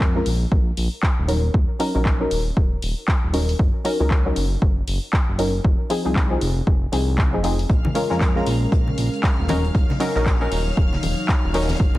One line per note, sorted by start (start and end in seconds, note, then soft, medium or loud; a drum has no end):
0.00 0.21 F2 medium
0.00 0.12 G#3 medium
0.00 0.12 C#4 medium
0.00 0.12 F4 medium
0.00 0.12 A#4 loud
0.00 kick loud
0.00 clap loud
0.15 0.33 G#3 medium
0.15 0.33 C#4 medium
0.15 0.34 F4 medium
0.15 0.34 A#4 loud
0.26 0.46 A#1 medium
0.26 open hi-hat loud
0.52 0.72 A#1 medium
0.52 kick loud
0.77 0.88 A#1 medium
0.77 open hi-hat loud
1.03 kick loud
1.03 clap loud
1.18 1.50 D#1 medium
1.28 1.43 F#3 medium
1.28 1.43 C#4 medium
1.28 1.43 D#4 medium
1.28 1.43 A#4 medium
1.28 open hi-hat loud
1.54 1.65 D#1 loud
1.54 kick loud
1.79 1.93 F#3 medium
1.79 1.93 C#4 medium
1.79 1.93 D#4 medium
1.79 1.93 A#4 loud
1.79 open hi-hat loud
1.95 2.27 A#1 medium
1.95 2.17 F#3 medium
1.95 2.17 C#4 medium
1.95 2.17 D#4 medium
1.95 2.17 A#4 loud
2.05 kick loud
2.05 clap loud
2.20 2.38 F#3 medium
2.20 2.39 C#4 medium
2.20 2.39 D#4 medium
2.20 2.39 A#4 loud
2.31 2.51 D#1 medium
2.31 open hi-hat loud
2.57 2.77 D#1 medium
2.57 kick loud
2.82 2.94 D#1 medium
2.82 open hi-hat loud
3.08 kick loud
3.08 clap loud
3.23 3.55 D#1 medium
3.33 3.48 F#3 medium
3.33 3.48 C#4 medium
3.33 3.48 D#4 medium
3.33 3.48 A#4 medium
3.33 open hi-hat loud
3.49 open hi-hat medium
3.59 3.70 F#1 loud
3.59 kick loud
3.84 3.98 F#3 medium
3.84 3.98 C#4 medium
3.84 3.98 D#4 medium
3.84 3.98 A#4 loud
3.84 open hi-hat loud
4.00 4.32 C#2 medium
4.00 4.22 F#3 medium
4.00 4.22 C#4 medium
4.00 4.22 D#4 medium
4.00 4.23 A#4 loud
4.11 kick loud
4.11 clap loud
4.25 4.43 F#3 medium
4.25 4.44 C#4 medium
4.25 4.44 D#4 medium
4.25 4.44 A#4 loud
4.36 4.56 F#1 loud
4.36 open hi-hat loud
4.62 4.82 F#1 medium
4.62 kick loud
4.88 4.99 F#1 medium
4.88 open hi-hat loud
5.13 kick loud
5.13 clap loud
5.29 5.60 F#1 medium
5.38 5.53 F#3 medium
5.38 5.53 C#4 medium
5.38 5.53 D#4 medium
5.38 5.53 A#4 medium
5.38 open hi-hat loud
5.64 5.76 F1 loud
5.64 kick loud
5.90 6.03 F3 medium
5.90 6.03 C4 medium
5.90 6.03 D#4 medium
5.90 6.03 G#4 loud
5.90 open hi-hat loud
6.05 6.37 C2 medium
6.05 6.27 F3 medium
6.05 6.27 C4 medium
6.05 6.28 D#4 medium
6.05 6.28 G#4 loud
6.16 kick loud
6.16 clap loud
6.31 6.49 F3 medium
6.31 6.49 C4 medium
6.31 6.49 D#4 medium
6.31 6.49 G#4 loud
6.41 6.61 F1 loud
6.41 open hi-hat loud
6.67 6.87 F1 medium
6.67 kick loud
6.92 7.35 C2 loud
6.92 7.30 F3 medium
6.92 7.30 C4 medium
6.92 7.30 D#4 medium
6.92 7.30 G#4 medium
6.92 open hi-hat loud
7.18 kick loud
7.18 clap loud
7.33 7.65 F1 medium
7.33 7.41 F3 medium
7.33 7.41 C4 medium
7.33 7.42 D#4 medium
7.33 7.42 G#4 medium
7.43 7.58 F3 medium
7.43 7.58 C4 medium
7.43 7.58 D#4 medium
7.43 7.59 G#4 medium
7.43 open hi-hat loud
7.59 open hi-hat medium
7.70 7.81 A#1 loud
7.70 9.47 G#3 medium
7.70 9.47 C#4 medium
7.70 9.47 A#4 medium
7.70 11.98 F5 medium
7.70 11.98 F6 medium
7.70 kick loud
7.70 closed hi-hat medium
7.85 high conga medium
7.85 low conga medium
7.95 8.08 G#3 medium
7.95 8.08 C#4 medium
7.95 8.08 F4 medium
7.95 8.09 A#4 loud
7.95 closed hi-hat medium
7.95 open hi-hat loud
8.10 8.42 F2 medium
8.10 8.32 G#3 medium
8.10 8.32 C#4 medium
8.10 8.33 F4 medium
8.10 8.33 A#4 loud
8.10 snare soft
8.21 kick loud
8.21 snare loud
8.21 clap loud
8.21 closed hi-hat medium
8.36 8.54 G#3 medium
8.36 8.54 C#4 medium
8.36 8.54 F4 medium
8.36 8.54 A#4 loud
8.36 snare soft
8.46 8.66 A#1 loud
8.46 closed hi-hat medium
8.46 open hi-hat loud
8.72 8.92 A#1 medium
8.72 kick loud
8.72 closed hi-hat medium
8.88 low conga medium
8.98 9.09 A#1 medium
8.98 closed hi-hat medium
8.98 open hi-hat loud
9.13 closed hi-hat soft
9.23 kick loud
9.23 snare loud
9.23 clap loud
9.23 closed hi-hat medium
9.39 9.70 D#1 medium
9.48 9.63 F#3 medium
9.48 11.98 F#3 medium
9.48 9.63 C#4 medium
9.48 11.98 D#4 medium
9.48 9.63 D#4 medium
9.48 9.64 A#4 medium
9.48 11.78 C#5 medium
9.48 closed hi-hat medium
9.48 open hi-hat loud
9.48 high conga medium
9.64 closed hi-hat soft
9.75 9.86 D#1 loud
9.75 kick loud
9.75 closed hi-hat medium
9.90 snare soft
9.90 low conga medium
10.00 10.13 F#3 loud
10.00 10.13 C#4 medium
10.00 10.14 D#4 medium
10.00 10.14 A#4 loud
10.00 closed hi-hat medium
10.00 open hi-hat loud
10.15 10.47 A#1 medium
10.15 10.37 F#3 medium
10.15 10.38 C#4 medium
10.15 10.38 D#4 medium
10.15 10.38 A#4 loud
10.15 snare soft
10.26 kick loud
10.26 snare loud
10.26 clap loud
10.26 closed hi-hat loud
10.41 10.59 F#3 medium
10.41 10.59 C#4 medium
10.41 10.59 D#4 medium
10.41 10.59 A#4 loud
10.41 closed hi-hat soft
10.52 10.72 D#1 medium
10.52 open hi-hat loud
10.52 open hi-hat medium
10.77 10.97 D#1 medium
10.77 kick loud
10.77 closed hi-hat medium
10.93 snare medium
10.93 low conga medium
11.03 11.14 D#1 medium
11.03 closed hi-hat medium
11.03 open hi-hat loud
11.03 high conga medium
11.28 kick loud
11.28 snare loud
11.28 clap loud
11.28 closed hi-hat medium
11.44 11.75 D#1 medium
11.54 11.68 F#3 medium
11.54 11.68 C#4 medium
11.54 11.69 D#4 medium
11.54 11.69 A#4 medium
11.54 snare medium
11.54 closed hi-hat medium
11.54 open hi-hat loud
11.62 snare medium
11.62 closed hi-hat medium
11.69 snare medium
11.69 closed hi-hat medium
11.69 open hi-hat medium
11.69 high conga medium
11.75 snare medium
11.75 closed hi-hat medium
11.80 11.91 F#1 loud
11.80 11.98 A#4 medium
11.80 kick loud
11.80 closed hi-hat medium
11.95 high conga medium
11.95 low conga medium